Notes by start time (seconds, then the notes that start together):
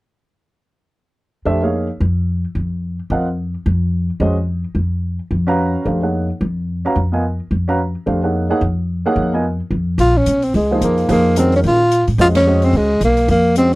1.45 F2 A3 D4 G4 C5 E5
1.62 A#3 D#4 G#4 C#5 F5
2.00 F2
2.55 F2
3.10 F2 C4 F4 A#4 D#5 F#5
3.66 F2
4.20 F2 G#3 C#4 F#4 C5 D#5
4.75 F2
5.31 F2
5.47 C#4 F#4 B4 F5 A#5
5.85 F2 A3 D4 G4 C5 F5
6.02 A#3 D#4 G#4 C#5 F#5
6.41 F2
6.85 C#4 F#4 B4 F5 A#5
6.96 F2
7.12 B3 F4 A#4 D#5 G#5
7.51 F2
7.68 C#4 F#4 B4 F5 A#5
8.06 F2 A3 D4 G4 C5 F5
8.22 A#3 D#4 G#4 C#5 F#5
8.50 A#3 D#4 G#4 C#5 F#5
8.61 F2
9.06 A#3 D#4 G#4 C#5 F#5
9.16 F2
9.33 B3 F4 A#4 D#5 G#5
9.71 F2
9.98 A#1 F4, open hi-hat
10.17 C#4
10.26 B1, closed hi-hat
10.42 C4, open hi-hat
10.54 C#2 G#3, open hi-hat
10.71 F3 A#3 D#4 G#4 C5
10.81 F2 A#3, closed hi-hat
10.98 open hi-hat
11.09 F2 F3 A#3 D#4 G#4 C5, open hi-hat
11.36 D#3 G#3 C4 C#4 F#4 A#4, closed hi-hat
11.52 C#4, open hi-hat
11.64 A#2 F4, open hi-hat
11.91 closed hi-hat
12.07 A2, open hi-hat
12.18 F2 G#3 C#4 F4 F#4 C5 D#5, open hi-hat
12.35 C#4, snare, ride
12.46 G#3 C#4 F#4 C5 D#5
12.62 C4, open hi-hat
12.73 C#2 G#3, open hi-hat
13.01 B1 A#3, closed hi-hat
13.17 open hi-hat
13.28 F2 A#3, open hi-hat
13.56 G#3 C4 C#4 F#4 C5 D#5, closed hi-hat